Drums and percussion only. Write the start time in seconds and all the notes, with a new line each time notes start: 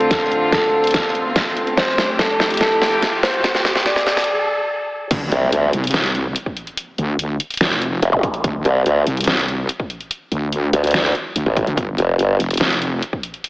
0.00 closed hi-hat
0.11 kick, snare, closed hi-hat
0.32 closed hi-hat
0.52 kick, snare, closed hi-hat
0.84 closed hi-hat
0.87 closed hi-hat
0.91 kick, snare, closed hi-hat
0.94 closed hi-hat
1.15 closed hi-hat
1.36 kick, snare, closed hi-hat
1.57 closed hi-hat
1.67 closed hi-hat
1.77 kick, snare, closed hi-hat
1.98 snare, closed hi-hat
2.19 kick, snare, closed hi-hat
2.40 snare
2.50 closed hi-hat
2.54 closed hi-hat
2.57 snare, closed hi-hat
2.61 kick, closed hi-hat
2.82 snare, closed hi-hat
3.02 kick, snare, closed hi-hat
3.23 snare, closed hi-hat
3.34 closed hi-hat
3.44 kick, snare, closed hi-hat
3.55 snare
3.65 snare, closed hi-hat
3.75 snare
3.86 kick, snare, closed hi-hat
3.96 snare
4.07 snare
4.17 snare, closed hi-hat
4.20 closed hi-hat
4.24 closed hi-hat
5.11 kick, closed hi-hat, crash
5.32 closed hi-hat
5.52 closed hi-hat
5.73 open hi-hat
5.84 closed hi-hat
5.87 closed hi-hat
5.91 snare, closed hi-hat
5.94 closed hi-hat
6.15 closed hi-hat
6.36 closed hi-hat
6.46 kick
6.57 closed hi-hat
6.67 closed hi-hat
6.77 closed hi-hat
6.98 closed hi-hat
7.19 closed hi-hat
7.40 open hi-hat
7.50 closed hi-hat
7.54 closed hi-hat
7.57 snare, closed hi-hat
7.61 closed hi-hat
7.82 closed hi-hat
8.02 closed hi-hat
8.13 kick
8.23 kick, closed hi-hat
8.34 closed hi-hat
8.44 kick, closed hi-hat
8.65 closed hi-hat
8.86 closed hi-hat
9.07 open hi-hat
9.17 closed hi-hat
9.21 closed hi-hat
9.24 snare, closed hi-hat
9.48 closed hi-hat
9.69 closed hi-hat
9.80 kick
9.90 closed hi-hat
10.01 closed hi-hat
10.11 closed hi-hat
10.32 closed hi-hat
10.52 closed hi-hat
10.73 open hi-hat
10.84 closed hi-hat
10.87 closed hi-hat
10.91 snare, closed hi-hat
10.94 closed hi-hat
11.15 closed hi-hat
11.36 closed hi-hat
11.46 kick
11.57 kick, closed hi-hat
11.67 closed hi-hat
11.77 kick, closed hi-hat
11.98 closed hi-hat
12.19 closed hi-hat
12.40 open hi-hat
12.51 closed hi-hat
12.54 closed hi-hat
12.57 snare, closed hi-hat
12.61 closed hi-hat
12.82 closed hi-hat
13.02 closed hi-hat
13.13 kick
13.23 closed hi-hat
13.34 closed hi-hat
13.44 closed hi-hat